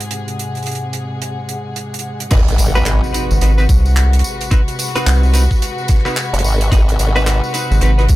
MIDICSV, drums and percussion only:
0, 0, Header, 1, 2, 480
1, 0, Start_track
1, 0, Tempo, 550459
1, 99, Time_signature, 4, 2, 24, 8
1, 7112, End_track
2, 0, Start_track
2, 0, Title_t, "Drums"
2, 4, Note_on_c, 9, 42, 66
2, 92, Note_off_c, 9, 42, 0
2, 94, Note_on_c, 9, 42, 88
2, 181, Note_off_c, 9, 42, 0
2, 244, Note_on_c, 9, 42, 43
2, 331, Note_off_c, 9, 42, 0
2, 344, Note_on_c, 9, 42, 67
2, 431, Note_off_c, 9, 42, 0
2, 481, Note_on_c, 9, 42, 23
2, 497, Note_off_c, 9, 42, 0
2, 497, Note_on_c, 9, 42, 27
2, 546, Note_off_c, 9, 42, 0
2, 546, Note_on_c, 9, 42, 30
2, 573, Note_off_c, 9, 42, 0
2, 573, Note_on_c, 9, 42, 35
2, 580, Note_off_c, 9, 42, 0
2, 580, Note_on_c, 9, 42, 76
2, 622, Note_off_c, 9, 42, 0
2, 622, Note_on_c, 9, 42, 40
2, 655, Note_off_c, 9, 42, 0
2, 655, Note_on_c, 9, 42, 44
2, 742, Note_off_c, 9, 42, 0
2, 812, Note_on_c, 9, 42, 75
2, 899, Note_off_c, 9, 42, 0
2, 1061, Note_on_c, 9, 42, 83
2, 1148, Note_off_c, 9, 42, 0
2, 1297, Note_on_c, 9, 42, 69
2, 1384, Note_off_c, 9, 42, 0
2, 1535, Note_on_c, 9, 42, 78
2, 1623, Note_off_c, 9, 42, 0
2, 1691, Note_on_c, 9, 42, 64
2, 1735, Note_off_c, 9, 42, 0
2, 1735, Note_on_c, 9, 42, 69
2, 1822, Note_off_c, 9, 42, 0
2, 1921, Note_on_c, 9, 42, 68
2, 2008, Note_off_c, 9, 42, 0
2, 2011, Note_on_c, 9, 54, 45
2, 2013, Note_on_c, 9, 42, 93
2, 2020, Note_on_c, 9, 36, 125
2, 2021, Note_on_c, 9, 49, 105
2, 2098, Note_off_c, 9, 54, 0
2, 2100, Note_off_c, 9, 42, 0
2, 2107, Note_off_c, 9, 36, 0
2, 2108, Note_off_c, 9, 49, 0
2, 2164, Note_on_c, 9, 54, 20
2, 2166, Note_on_c, 9, 42, 56
2, 2251, Note_off_c, 9, 54, 0
2, 2252, Note_off_c, 9, 42, 0
2, 2252, Note_on_c, 9, 42, 81
2, 2260, Note_on_c, 9, 54, 78
2, 2339, Note_off_c, 9, 42, 0
2, 2347, Note_off_c, 9, 54, 0
2, 2403, Note_on_c, 9, 54, 33
2, 2489, Note_off_c, 9, 54, 0
2, 2489, Note_on_c, 9, 54, 46
2, 2493, Note_on_c, 9, 39, 113
2, 2495, Note_on_c, 9, 42, 86
2, 2577, Note_off_c, 9, 54, 0
2, 2580, Note_off_c, 9, 39, 0
2, 2582, Note_off_c, 9, 42, 0
2, 2647, Note_on_c, 9, 54, 21
2, 2735, Note_off_c, 9, 54, 0
2, 2741, Note_on_c, 9, 42, 80
2, 2741, Note_on_c, 9, 54, 71
2, 2828, Note_off_c, 9, 42, 0
2, 2828, Note_off_c, 9, 54, 0
2, 2883, Note_on_c, 9, 54, 31
2, 2970, Note_off_c, 9, 54, 0
2, 2976, Note_on_c, 9, 54, 37
2, 2977, Note_on_c, 9, 42, 91
2, 3063, Note_off_c, 9, 54, 0
2, 3064, Note_off_c, 9, 42, 0
2, 3122, Note_on_c, 9, 54, 20
2, 3125, Note_on_c, 9, 37, 37
2, 3209, Note_off_c, 9, 54, 0
2, 3212, Note_off_c, 9, 37, 0
2, 3218, Note_on_c, 9, 36, 98
2, 3219, Note_on_c, 9, 54, 72
2, 3305, Note_off_c, 9, 36, 0
2, 3306, Note_off_c, 9, 54, 0
2, 3361, Note_on_c, 9, 54, 30
2, 3448, Note_off_c, 9, 54, 0
2, 3453, Note_on_c, 9, 54, 40
2, 3458, Note_on_c, 9, 39, 116
2, 3464, Note_on_c, 9, 42, 91
2, 3540, Note_off_c, 9, 54, 0
2, 3545, Note_off_c, 9, 39, 0
2, 3551, Note_off_c, 9, 42, 0
2, 3604, Note_on_c, 9, 42, 70
2, 3610, Note_on_c, 9, 54, 19
2, 3656, Note_off_c, 9, 42, 0
2, 3656, Note_on_c, 9, 42, 75
2, 3697, Note_off_c, 9, 54, 0
2, 3699, Note_on_c, 9, 54, 73
2, 3743, Note_off_c, 9, 42, 0
2, 3787, Note_off_c, 9, 54, 0
2, 3842, Note_on_c, 9, 54, 32
2, 3848, Note_on_c, 9, 42, 80
2, 3929, Note_off_c, 9, 54, 0
2, 3935, Note_off_c, 9, 42, 0
2, 3936, Note_on_c, 9, 42, 92
2, 3937, Note_on_c, 9, 36, 127
2, 3940, Note_on_c, 9, 54, 41
2, 4023, Note_off_c, 9, 42, 0
2, 4025, Note_off_c, 9, 36, 0
2, 4027, Note_off_c, 9, 54, 0
2, 4081, Note_on_c, 9, 42, 55
2, 4086, Note_on_c, 9, 54, 18
2, 4168, Note_off_c, 9, 42, 0
2, 4173, Note_off_c, 9, 54, 0
2, 4175, Note_on_c, 9, 42, 87
2, 4180, Note_on_c, 9, 54, 80
2, 4263, Note_off_c, 9, 42, 0
2, 4268, Note_off_c, 9, 54, 0
2, 4321, Note_on_c, 9, 42, 54
2, 4325, Note_on_c, 9, 54, 27
2, 4327, Note_on_c, 9, 37, 43
2, 4408, Note_off_c, 9, 42, 0
2, 4412, Note_off_c, 9, 54, 0
2, 4414, Note_off_c, 9, 37, 0
2, 4421, Note_on_c, 9, 54, 43
2, 4422, Note_on_c, 9, 39, 126
2, 4422, Note_on_c, 9, 42, 82
2, 4508, Note_off_c, 9, 54, 0
2, 4509, Note_off_c, 9, 39, 0
2, 4509, Note_off_c, 9, 42, 0
2, 4563, Note_on_c, 9, 54, 21
2, 4650, Note_off_c, 9, 54, 0
2, 4653, Note_on_c, 9, 42, 83
2, 4662, Note_on_c, 9, 54, 79
2, 4740, Note_off_c, 9, 42, 0
2, 4749, Note_off_c, 9, 54, 0
2, 4804, Note_on_c, 9, 36, 64
2, 4809, Note_on_c, 9, 54, 31
2, 4891, Note_off_c, 9, 36, 0
2, 4897, Note_off_c, 9, 54, 0
2, 4900, Note_on_c, 9, 54, 37
2, 4902, Note_on_c, 9, 42, 90
2, 4987, Note_off_c, 9, 54, 0
2, 4989, Note_off_c, 9, 42, 0
2, 5041, Note_on_c, 9, 54, 19
2, 5128, Note_off_c, 9, 54, 0
2, 5129, Note_on_c, 9, 54, 76
2, 5132, Note_on_c, 9, 42, 86
2, 5138, Note_on_c, 9, 36, 110
2, 5142, Note_on_c, 9, 37, 51
2, 5188, Note_off_c, 9, 37, 0
2, 5188, Note_on_c, 9, 37, 41
2, 5216, Note_off_c, 9, 54, 0
2, 5219, Note_off_c, 9, 42, 0
2, 5223, Note_off_c, 9, 37, 0
2, 5223, Note_on_c, 9, 37, 34
2, 5225, Note_off_c, 9, 36, 0
2, 5283, Note_on_c, 9, 39, 34
2, 5286, Note_on_c, 9, 54, 29
2, 5287, Note_off_c, 9, 37, 0
2, 5287, Note_on_c, 9, 37, 29
2, 5302, Note_off_c, 9, 37, 0
2, 5302, Note_on_c, 9, 37, 24
2, 5352, Note_off_c, 9, 37, 0
2, 5352, Note_on_c, 9, 37, 19
2, 5370, Note_off_c, 9, 39, 0
2, 5374, Note_off_c, 9, 54, 0
2, 5376, Note_on_c, 9, 42, 81
2, 5377, Note_on_c, 9, 39, 116
2, 5379, Note_on_c, 9, 54, 41
2, 5439, Note_off_c, 9, 37, 0
2, 5464, Note_off_c, 9, 39, 0
2, 5464, Note_off_c, 9, 42, 0
2, 5466, Note_off_c, 9, 54, 0
2, 5527, Note_on_c, 9, 42, 69
2, 5532, Note_on_c, 9, 54, 22
2, 5571, Note_off_c, 9, 42, 0
2, 5571, Note_on_c, 9, 42, 85
2, 5619, Note_off_c, 9, 54, 0
2, 5619, Note_on_c, 9, 54, 73
2, 5658, Note_off_c, 9, 42, 0
2, 5706, Note_off_c, 9, 54, 0
2, 5763, Note_on_c, 9, 42, 84
2, 5763, Note_on_c, 9, 54, 32
2, 5850, Note_off_c, 9, 42, 0
2, 5850, Note_off_c, 9, 54, 0
2, 5858, Note_on_c, 9, 36, 126
2, 5861, Note_on_c, 9, 54, 40
2, 5863, Note_on_c, 9, 42, 90
2, 5945, Note_off_c, 9, 36, 0
2, 5948, Note_off_c, 9, 54, 0
2, 5950, Note_off_c, 9, 42, 0
2, 6005, Note_on_c, 9, 54, 19
2, 6007, Note_on_c, 9, 42, 54
2, 6092, Note_off_c, 9, 54, 0
2, 6094, Note_off_c, 9, 42, 0
2, 6096, Note_on_c, 9, 54, 72
2, 6102, Note_on_c, 9, 42, 84
2, 6184, Note_off_c, 9, 54, 0
2, 6189, Note_off_c, 9, 42, 0
2, 6245, Note_on_c, 9, 54, 30
2, 6332, Note_off_c, 9, 54, 0
2, 6339, Note_on_c, 9, 39, 120
2, 6339, Note_on_c, 9, 54, 41
2, 6343, Note_on_c, 9, 42, 93
2, 6426, Note_off_c, 9, 39, 0
2, 6427, Note_off_c, 9, 54, 0
2, 6430, Note_off_c, 9, 42, 0
2, 6485, Note_on_c, 9, 54, 20
2, 6572, Note_off_c, 9, 54, 0
2, 6574, Note_on_c, 9, 42, 74
2, 6579, Note_on_c, 9, 54, 68
2, 6661, Note_off_c, 9, 42, 0
2, 6666, Note_off_c, 9, 54, 0
2, 6729, Note_on_c, 9, 54, 28
2, 6813, Note_on_c, 9, 42, 81
2, 6815, Note_off_c, 9, 54, 0
2, 6815, Note_on_c, 9, 54, 41
2, 6900, Note_off_c, 9, 42, 0
2, 6902, Note_off_c, 9, 54, 0
2, 6965, Note_on_c, 9, 54, 20
2, 6968, Note_on_c, 9, 37, 35
2, 7051, Note_on_c, 9, 42, 73
2, 7052, Note_off_c, 9, 54, 0
2, 7056, Note_off_c, 9, 37, 0
2, 7057, Note_on_c, 9, 36, 109
2, 7057, Note_on_c, 9, 54, 67
2, 7112, Note_off_c, 9, 36, 0
2, 7112, Note_off_c, 9, 42, 0
2, 7112, Note_off_c, 9, 54, 0
2, 7112, End_track
0, 0, End_of_file